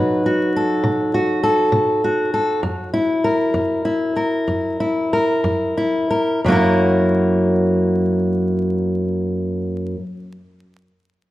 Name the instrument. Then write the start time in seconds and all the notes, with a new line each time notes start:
steel-string acoustic guitar
Already playing: B2 F#3 D#4 F#4 B4
0.26 F#4
0.56 A4
0.84 B2
1.14 F#4
1.43 A4
1.72 B2
2.04 F#4
2.34 A4
2.63 F#2
2.94 E4
3.24 A#4
3.54 F#2
3.85 E4
4.16 A#4
4.48 F#2
4.80 E4
5.13 A#4
5.44 F#2
5.77 E4
6.11 A#4
6.44 F#2 F#3 A#3
6.50 E4 A#4